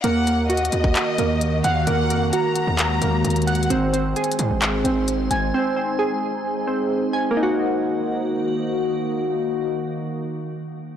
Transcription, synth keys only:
X:1
M:4/4
L:1/8
Q:1/4=131
K:Ebdor
V:1 name="Synth keys"
B, B, G3 B,2 g | B, B, G3 B,2 g | C C A3 C2 a | C C A3 C2 a |
[B,EG]8- | [B,EG]8 |]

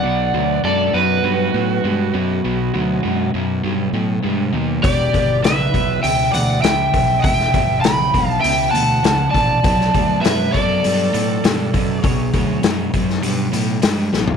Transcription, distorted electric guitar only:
X:1
M:4/4
L:1/8
Q:1/4=100
K:Bm
V:1 name="Distorted electric guitar" clef=bass
[B,,F,] [B,,F,] [B,,^G,] [B,,F,] [B,,F,] [B,,F,] [B,,G,] [B,,F,] | [B,,F,] [B,,F,] [B,,^G,] [B,,F,] [B,,F,] [B,,F,] [B,,G,] [B,,F,] | [E,,B,,] [E,,B,,] [E,,C,] [E,,B,,] [E,,B,,] [E,,B,,] [E,,C,] [E,,B,,] | [E,,B,,] [E,,B,,] [E,,C,] [E,,B,,] [E,,B,,] [E,,B,,] [E,,C,] [E,,B,,] |
[B,,F,] [B,,F,] [B,,^G,] [B,,F,] [B,,F,] [B,,F,] [B,,G,] [B,,F,] | [B,,F,] [B,,F,] [B,,^G,] [B,,F,] [B,,F,] [B,,F,] [B,,G,] [B,,F,] |]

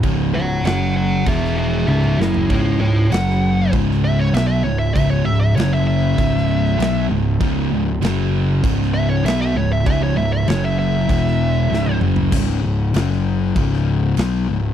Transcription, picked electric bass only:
X:1
M:4/4
L:1/8
Q:1/4=98
K:C#m
V:1 name="Picked electric bass" clef=bass
C,,, C,,, F,,,2 E,,,2 C,,, F,,, | C,,, C,,, F,,,2 C,,,2 B,,, C,,, | C,,, C,,, F,,,2 C,,,2 B,,, C,,, | C,,, C,,, F,,,2 C,,,2 B,,, C,,, |
C,,, C,,, F,,,2 E,,,2 C,,, F,,, | C,,, C,,, F,,,2 C,,,2 B,,, C,,, |]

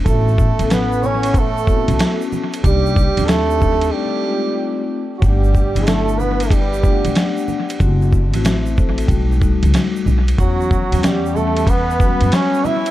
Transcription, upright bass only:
X:1
M:4/4
L:1/16
Q:"Swing 16ths" 1/4=93
K:Edor
V:1 name="Upright bass" clef=bass
A,,,3 A,,,8 B,,, z4 | =C,,3 _E,,4- E,, z8 | G,,,3 G,,,8 B,,, z4 | F,,,3 A,,,4- A,,, B,,,3 C,, z2 B,,,2 |
E,,3 E,,8 F,, z4 |]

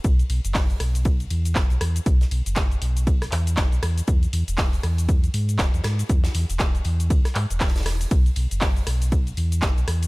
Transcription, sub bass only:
X:1
M:4/4
L:1/16
Q:"Swing 16ths" 1/4=119
K:Emix
V:1 name="Sub bass" clef=bass
B,,, z B,,, F,,,3 B,,,4 E,,2 F,,, B,,, E,, z | B,,, z B,,, F,,,3 B,,,4 E,,2 F,,, B,,, E,, z | E,, z E,, E,,,3 E,,4 G,,2 E,,, E,, G,, z | E,, z E,, E,,,3 E,,2 D,, z G,, E,,,4- E,,, |
B,,, z B,,, F,,,3 B,,,4 E,,2 F,,, B,,, E,, z |]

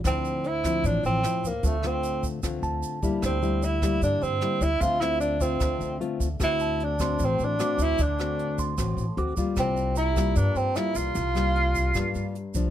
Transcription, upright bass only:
X:1
M:4/4
L:1/16
Q:1/4=151
K:Dm
V:1 name="Upright bass" clef=bass
D,,8 A,,,2 A,,,2 z2 D,,2 | D,,8 D,,2 D,,2 z2 D,,2 | D,,8 G,,2 G,,2 z2 D,,2 | D,,8 D,,2 D,,2 z2 D,,2 |
D,,8 A,,,2 A,,,2 z2 D,,2 | D,,8 A,,,2 A,,, z D,,2 D,,2 | C,,8 G,,2 G,,2 z2 C,,2 | C,,8 G,,2 G,,2 z2 C,,2 |]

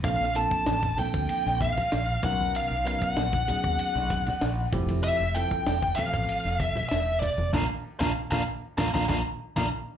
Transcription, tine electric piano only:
X:1
M:4/4
L:1/16
Q:1/4=96
K:F
V:1 name="Tine electric piano"
[F,B,CDA]2 [F,B,CDA]2 z2 [F,B,CDA]6 z2 [^F,=B,^C^D^A]2- | [^F,=B,^C^D^A]2 [F,B,CDA]2 z2 [F,B,CD_A]6 z2 [=F,=A,=CEG]2- | [F,A,CEG]2 [F,A,CEA]2 z2 [E,F,A,CA]6 z4 | [B,DF] z2 [B,DF] z [B,DF] z2 [B,DF] [B,DF] [B,DF] z2 [B,DF] z2 |]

